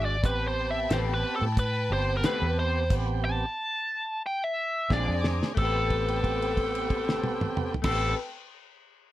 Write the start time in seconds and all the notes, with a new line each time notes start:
Already playing: G#1 G#3 D4 F#4 E5 G#5 D6
0.05 D5
0.23 A1 B3 C4 G4 B4 G5 A5 B5, kick, closed hi-hat
0.48 C5
0.71 E5
0.90 A1 A3 C4 G4 B4 C5, snare, closed hi-hat
1.14 B4
1.36 A4
1.42 A2
1.57 B4, kick, closed hi-hat
1.90 G1 B3 C4 G4 C5
2.17 A#4
2.23 A3 C4 G4 B4, snare, closed hi-hat
2.42 E2
2.59 C5
2.90 A1 B3 C4 G4, kick, closed hi-hat, crash
3.25 A5
4.26 G5
4.44 E5
4.89 A#1 A#2 G#3 C4 D4 F4 G#4 D5 G#5 A#5 D6, kick, snare
5.08 F2
5.24 snare
5.43 snare
5.55 A1 A3 B3 C4 G4 A4, kick, crash
5.59 G4 B4 G5
5.64 B4
5.90 kick, crash
6.08 crash
6.24 kick, crash
6.42 crash
6.57 kick, crash
6.75 crash
6.90 kick, crash
7.09 snare
7.24 high tom
7.41 mid tom
7.57 mid tom
7.74 floor tom
7.82 A1 A3 B3 C4 G4 A4 B4 G5, kick, snare, crash
7.89 G4 B4